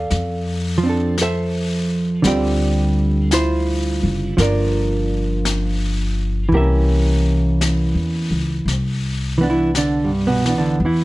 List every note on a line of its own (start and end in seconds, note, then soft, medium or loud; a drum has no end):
0.00 0.83 A4 medium
0.00 0.86 D5 medium
0.00 0.89 F5 medium
0.10 2.20 F2 medium
0.10 brush sweep soft
0.10 snare soft
0.78 2.22 F3 soft
0.83 1.21 C4 soft
0.83 1.21 D4 soft
0.89 1.21 A4 soft
1.18 2.22 A4 medium
1.18 brush sweep soft
1.18 snare soft
1.18 hi-hat pedal soft
1.22 2.22 C5 medium
1.22 2.30 E5 medium
2.22 3.99 D2 medium
2.22 4.37 D3 medium
2.22 4.37 G3 soft
2.22 3.33 C4 medium
2.22 brush sweep soft
2.22 snare soft
2.27 3.31 F4 medium
2.27 4.35 G4 medium
2.27 3.28 D5 medium
3.31 4.35 E4 medium
3.31 4.35 F4 medium
3.31 4.43 C5 medium
3.31 brush sweep soft
3.31 snare soft
3.31 hi-hat pedal medium
4.03 4.36 F#1 medium
4.37 6.48 G1 medium
4.37 6.48 F3 soft
4.37 6.53 A#3 soft
4.37 6.49 F4 medium
4.37 6.49 A#4 medium
4.37 brush sweep soft
4.37 snare soft
4.42 6.54 D4 soft
4.42 6.56 D5 medium
5.45 brush sweep soft
5.45 snare soft
5.45 hi-hat pedal soft
6.49 7.91 C2 medium
6.49 8.65 E3 soft
6.53 8.68 A#3 soft
6.53 8.64 G4 medium
6.53 8.64 A#4 soft
6.53 8.30 E5 medium
6.53 brush sweep soft
6.60 8.71 C#4 soft
7.61 brush sweep soft
7.61 snare soft
7.61 hi-hat pedal soft
7.95 8.28 E2 medium
8.31 8.64 C#2 medium
8.65 10.76 C2 medium
8.65 brush sweep soft
8.65 snare soft
9.38 9.50 E3 soft
9.38 10.26 B3 soft
9.43 9.76 D4 soft
9.50 9.71 E3 soft
9.50 9.70 E4 medium
9.75 10.11 D3 soft
9.75 10.10 D4 medium
9.75 brush sweep soft
9.75 snare soft
9.75 hi-hat pedal soft
10.04 10.42 G2 soft
10.04 10.42 G3 soft
10.27 10.54 B2 medium
10.27 10.46 B3 medium
10.45 10.84 E3 soft
10.45 11.04 B3 soft
10.45 10.57 D4 soft
10.45 snare soft
10.58 10.78 D3 medium
10.58 10.78 D4 medium
10.80 11.04 E2 medium
10.80 brush sweep soft
10.85 11.04 E3 medium
10.85 11.04 E4 medium